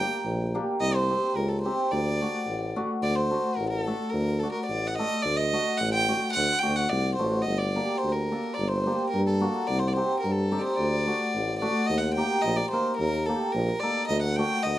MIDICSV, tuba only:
0, 0, Header, 1, 2, 480
1, 0, Start_track
1, 0, Tempo, 553506
1, 697, Time_signature, 2, 2, 24, 8
1, 12823, End_track
2, 0, Start_track
2, 0, Title_t, "Tuba"
2, 0, Program_c, 0, 58
2, 212, Note_on_c, 0, 34, 84
2, 502, Note_off_c, 0, 34, 0
2, 696, Note_on_c, 0, 36, 86
2, 985, Note_off_c, 0, 36, 0
2, 1170, Note_on_c, 0, 37, 81
2, 1462, Note_off_c, 0, 37, 0
2, 1662, Note_on_c, 0, 38, 91
2, 1951, Note_off_c, 0, 38, 0
2, 2138, Note_on_c, 0, 33, 76
2, 2428, Note_off_c, 0, 33, 0
2, 2617, Note_on_c, 0, 38, 92
2, 2908, Note_off_c, 0, 38, 0
2, 3105, Note_on_c, 0, 33, 80
2, 3394, Note_off_c, 0, 33, 0
2, 3583, Note_on_c, 0, 38, 89
2, 3873, Note_off_c, 0, 38, 0
2, 4068, Note_on_c, 0, 33, 72
2, 4357, Note_off_c, 0, 33, 0
2, 4554, Note_on_c, 0, 38, 85
2, 4841, Note_off_c, 0, 38, 0
2, 5035, Note_on_c, 0, 33, 90
2, 5322, Note_off_c, 0, 33, 0
2, 5516, Note_on_c, 0, 38, 96
2, 5659, Note_off_c, 0, 38, 0
2, 5759, Note_on_c, 0, 38, 83
2, 5972, Note_off_c, 0, 38, 0
2, 5991, Note_on_c, 0, 36, 81
2, 6208, Note_off_c, 0, 36, 0
2, 6231, Note_on_c, 0, 33, 76
2, 6448, Note_off_c, 0, 33, 0
2, 6470, Note_on_c, 0, 31, 83
2, 6759, Note_off_c, 0, 31, 0
2, 6963, Note_on_c, 0, 38, 68
2, 7248, Note_off_c, 0, 38, 0
2, 7446, Note_on_c, 0, 31, 83
2, 7730, Note_off_c, 0, 31, 0
2, 7926, Note_on_c, 0, 43, 92
2, 8210, Note_off_c, 0, 43, 0
2, 8405, Note_on_c, 0, 36, 86
2, 8689, Note_off_c, 0, 36, 0
2, 8884, Note_on_c, 0, 43, 80
2, 9168, Note_off_c, 0, 43, 0
2, 9351, Note_on_c, 0, 38, 91
2, 9639, Note_off_c, 0, 38, 0
2, 9838, Note_on_c, 0, 33, 75
2, 10123, Note_off_c, 0, 33, 0
2, 10315, Note_on_c, 0, 39, 90
2, 10601, Note_off_c, 0, 39, 0
2, 10796, Note_on_c, 0, 34, 89
2, 10937, Note_off_c, 0, 34, 0
2, 11272, Note_on_c, 0, 39, 92
2, 11558, Note_off_c, 0, 39, 0
2, 11747, Note_on_c, 0, 34, 92
2, 11890, Note_off_c, 0, 34, 0
2, 12225, Note_on_c, 0, 38, 97
2, 12512, Note_off_c, 0, 38, 0
2, 12705, Note_on_c, 0, 38, 78
2, 12823, Note_off_c, 0, 38, 0
2, 12823, End_track
0, 0, End_of_file